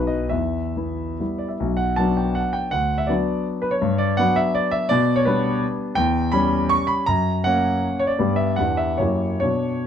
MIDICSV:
0, 0, Header, 1, 2, 480
1, 0, Start_track
1, 0, Key_signature, 2, "minor"
1, 0, Tempo, 440852
1, 343, Time_signature, 3, 2, 24, 8
1, 1309, Tempo, 396040
1, 2269, Tempo, 367422
1, 5629, Tempo, 352319
1, 7549, Tempo, 370828
1, 10429, Tempo, 399467
1, 11389, Tempo, 440852
1, 12334, End_track
2, 0, Start_track
2, 0, Title_t, "Grand piano"
2, 0, Program_c, 0, 0
2, 0, Note_on_c, 0, 35, 57
2, 0, Note_on_c, 0, 54, 41
2, 0, Note_on_c, 0, 59, 43
2, 0, Note_on_c, 0, 63, 43
2, 0, Note_on_c, 0, 71, 71
2, 78, Note_on_c, 0, 75, 69
2, 85, Control_c, 0, 64, 127
2, 294, Note_off_c, 0, 54, 0
2, 298, Note_off_c, 0, 63, 0
2, 299, Note_off_c, 0, 59, 0
2, 320, Note_on_c, 0, 76, 73
2, 321, Note_off_c, 0, 35, 0
2, 329, Note_off_c, 0, 75, 0
2, 341, Note_on_c, 0, 40, 59
2, 359, Control_c, 0, 64, 0
2, 373, Note_off_c, 0, 71, 0
2, 612, Control_c, 0, 64, 127
2, 822, Note_off_c, 0, 40, 0
2, 835, Note_on_c, 0, 64, 45
2, 837, Note_on_c, 0, 59, 39
2, 1265, Note_off_c, 0, 64, 0
2, 1266, Note_off_c, 0, 59, 0
2, 1307, Note_on_c, 0, 59, 37
2, 1309, Note_on_c, 0, 55, 39
2, 1316, Note_on_c, 0, 64, 42
2, 1326, Control_c, 0, 64, 0
2, 1529, Note_on_c, 0, 74, 57
2, 1552, Note_off_c, 0, 76, 0
2, 1651, Note_on_c, 0, 76, 48
2, 1670, Note_off_c, 0, 74, 0
2, 1753, Note_off_c, 0, 59, 0
2, 1754, Note_off_c, 0, 55, 0
2, 1758, Note_off_c, 0, 64, 0
2, 1792, Note_on_c, 0, 35, 60
2, 1992, Note_on_c, 0, 78, 75
2, 2013, Note_off_c, 0, 76, 0
2, 2044, Control_c, 0, 64, 127
2, 2231, Note_on_c, 0, 81, 82
2, 2250, Note_off_c, 0, 35, 0
2, 2251, Note_off_c, 0, 78, 0
2, 2253, Note_on_c, 0, 54, 51
2, 2262, Note_on_c, 0, 59, 45
2, 2267, Note_on_c, 0, 62, 57
2, 2498, Note_on_c, 0, 79, 63
2, 2503, Note_off_c, 0, 81, 0
2, 2733, Note_on_c, 0, 78, 73
2, 2754, Note_off_c, 0, 79, 0
2, 2782, Control_c, 0, 64, 0
2, 2967, Note_on_c, 0, 79, 84
2, 2986, Note_off_c, 0, 78, 0
2, 3172, Note_off_c, 0, 54, 0
2, 3177, Note_off_c, 0, 59, 0
2, 3179, Note_off_c, 0, 62, 0
2, 3207, Note_on_c, 0, 78, 87
2, 3215, Note_off_c, 0, 79, 0
2, 3226, Note_on_c, 0, 38, 56
2, 3456, Control_c, 0, 64, 127
2, 3555, Note_on_c, 0, 76, 79
2, 3574, Note_off_c, 0, 78, 0
2, 3670, Note_on_c, 0, 74, 72
2, 3694, Note_off_c, 0, 38, 0
2, 3696, Note_off_c, 0, 76, 0
2, 3696, Note_on_c, 0, 54, 50
2, 3702, Note_on_c, 0, 59, 51
2, 3705, Note_on_c, 0, 62, 56
2, 3731, Control_c, 0, 64, 0
2, 4180, Note_off_c, 0, 74, 0
2, 4388, Note_on_c, 0, 71, 81
2, 4509, Note_on_c, 0, 73, 81
2, 4528, Note_off_c, 0, 71, 0
2, 4606, Note_off_c, 0, 54, 0
2, 4609, Note_off_c, 0, 59, 0
2, 4610, Note_off_c, 0, 62, 0
2, 4650, Note_on_c, 0, 43, 70
2, 4868, Note_on_c, 0, 74, 89
2, 4876, Note_off_c, 0, 73, 0
2, 4890, Control_c, 0, 64, 127
2, 5113, Note_on_c, 0, 78, 97
2, 5119, Note_off_c, 0, 43, 0
2, 5127, Note_off_c, 0, 74, 0
2, 5136, Note_on_c, 0, 54, 56
2, 5139, Note_on_c, 0, 59, 60
2, 5140, Note_on_c, 0, 62, 61
2, 5152, Control_c, 0, 64, 0
2, 5360, Note_on_c, 0, 76, 96
2, 5377, Note_off_c, 0, 78, 0
2, 5603, Note_on_c, 0, 74, 91
2, 5615, Note_off_c, 0, 76, 0
2, 5831, Note_on_c, 0, 76, 100
2, 5853, Note_off_c, 0, 74, 0
2, 6040, Note_off_c, 0, 54, 0
2, 6042, Note_off_c, 0, 59, 0
2, 6043, Note_off_c, 0, 62, 0
2, 6069, Note_on_c, 0, 74, 105
2, 6080, Note_off_c, 0, 76, 0
2, 6095, Note_on_c, 0, 47, 80
2, 6349, Control_c, 0, 64, 127
2, 6435, Note_on_c, 0, 73, 93
2, 6443, Note_off_c, 0, 74, 0
2, 6564, Note_on_c, 0, 71, 81
2, 6569, Note_off_c, 0, 47, 0
2, 6574, Note_off_c, 0, 73, 0
2, 6584, Note_on_c, 0, 55, 58
2, 6588, Note_on_c, 0, 59, 66
2, 6594, Note_on_c, 0, 62, 68
2, 7068, Note_off_c, 0, 71, 0
2, 7093, Control_c, 0, 64, 0
2, 7495, Note_off_c, 0, 55, 0
2, 7496, Note_off_c, 0, 59, 0
2, 7500, Note_off_c, 0, 62, 0
2, 7520, Note_on_c, 0, 79, 110
2, 7549, Note_on_c, 0, 40, 80
2, 7761, Control_c, 0, 64, 127
2, 7990, Note_on_c, 0, 83, 101
2, 8009, Note_off_c, 0, 40, 0
2, 8009, Note_off_c, 0, 79, 0
2, 8010, Note_on_c, 0, 55, 71
2, 8012, Note_on_c, 0, 61, 70
2, 8479, Note_on_c, 0, 85, 97
2, 8492, Note_off_c, 0, 83, 0
2, 8525, Control_c, 0, 64, 0
2, 8706, Note_on_c, 0, 83, 94
2, 8727, Note_off_c, 0, 85, 0
2, 8919, Note_off_c, 0, 55, 0
2, 8920, Note_off_c, 0, 61, 0
2, 8958, Note_on_c, 0, 82, 104
2, 8960, Note_off_c, 0, 83, 0
2, 8977, Note_on_c, 0, 42, 70
2, 9203, Control_c, 0, 64, 127
2, 9445, Note_on_c, 0, 78, 98
2, 9460, Note_off_c, 0, 42, 0
2, 9465, Note_off_c, 0, 82, 0
2, 9474, Note_on_c, 0, 61, 63
2, 9475, Note_on_c, 0, 58, 58
2, 9975, Control_c, 0, 64, 0
2, 10162, Note_on_c, 0, 73, 86
2, 10179, Note_off_c, 0, 78, 0
2, 10260, Note_on_c, 0, 74, 78
2, 10296, Note_off_c, 0, 73, 0
2, 10377, Note_off_c, 0, 61, 0
2, 10378, Note_off_c, 0, 58, 0
2, 10413, Note_on_c, 0, 59, 54
2, 10418, Note_on_c, 0, 43, 68
2, 10425, Note_on_c, 0, 67, 51
2, 10621, Note_on_c, 0, 76, 85
2, 10633, Note_off_c, 0, 74, 0
2, 10649, Control_c, 0, 64, 127
2, 10844, Note_off_c, 0, 59, 0
2, 10850, Note_off_c, 0, 67, 0
2, 10863, Note_on_c, 0, 78, 83
2, 10879, Note_off_c, 0, 43, 0
2, 10881, Note_off_c, 0, 76, 0
2, 10887, Note_on_c, 0, 40, 61
2, 10887, Note_on_c, 0, 59, 45
2, 10897, Note_on_c, 0, 62, 48
2, 10906, Note_on_c, 0, 67, 42
2, 10916, Control_c, 0, 64, 0
2, 11116, Note_on_c, 0, 76, 83
2, 11126, Note_off_c, 0, 78, 0
2, 11156, Control_c, 0, 64, 127
2, 11336, Note_off_c, 0, 59, 0
2, 11341, Note_off_c, 0, 62, 0
2, 11346, Note_off_c, 0, 67, 0
2, 11359, Note_on_c, 0, 73, 77
2, 11369, Note_off_c, 0, 40, 0
2, 11376, Note_off_c, 0, 76, 0
2, 11383, Note_on_c, 0, 42, 58
2, 11389, Note_on_c, 0, 58, 44
2, 11393, Note_on_c, 0, 64, 48
2, 11398, Note_on_c, 0, 67, 47
2, 11399, Control_c, 0, 64, 0
2, 11625, Control_c, 0, 64, 127
2, 11807, Note_off_c, 0, 73, 0
2, 11813, Note_off_c, 0, 58, 0
2, 11816, Note_off_c, 0, 64, 0
2, 11818, Note_off_c, 0, 67, 0
2, 11824, Note_on_c, 0, 73, 86
2, 11840, Note_off_c, 0, 42, 0
2, 11846, Note_on_c, 0, 66, 44
2, 11848, Note_on_c, 0, 47, 54
2, 11848, Note_on_c, 0, 62, 46
2, 11872, Control_c, 0, 64, 0
2, 12104, Control_c, 0, 64, 127
2, 12196, Note_off_c, 0, 47, 0
2, 12245, Note_off_c, 0, 66, 0
2, 12246, Note_off_c, 0, 62, 0
2, 12334, Note_off_c, 0, 73, 0
2, 12334, End_track
0, 0, End_of_file